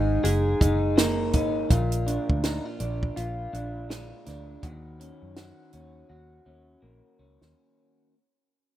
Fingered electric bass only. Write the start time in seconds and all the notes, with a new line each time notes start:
Already playing: G#1
0.24 F#1
0.61 F#1
1.34 G#1
1.70 A#1
2.30 D2
2.80 A#1
3.17 A#1
3.53 A#1
4.27 D2
4.63 D#2
5.22 F#2
5.74 D#2
6.10 D#2
6.46 D#2
6.83 A#1
7.19 C#2
7.41 D#2